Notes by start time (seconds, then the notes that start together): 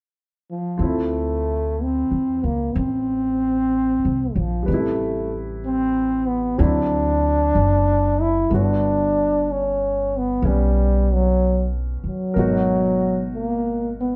0.51 F3
0.78 D2 C4 F4 A4
0.82 E4
0.86 A3
1.83 C4
2.11 E2
2.44 C#2 A#3
2.76 A1 C4
4.05 C2
4.36 A#1 F3
4.63 G3 B4
4.68 A1 C3 A3
4.74 E4
5.65 C4
6.28 B3
6.58 D2 F#3 A3 C4 D4 E4
7.55 F#1
8.21 E4
8.50 G1 D3 A3 B3
8.54 D4 F#4
9.51 C#4
10.17 B3
10.42 B1 G3 B3 C#4
11.13 F#3
12.04 muted upright bass stroke
12.08 F#3
12.34 G#1 B2 A#4
12.38 D#4 F#4
13.35 A#3
14.00 B3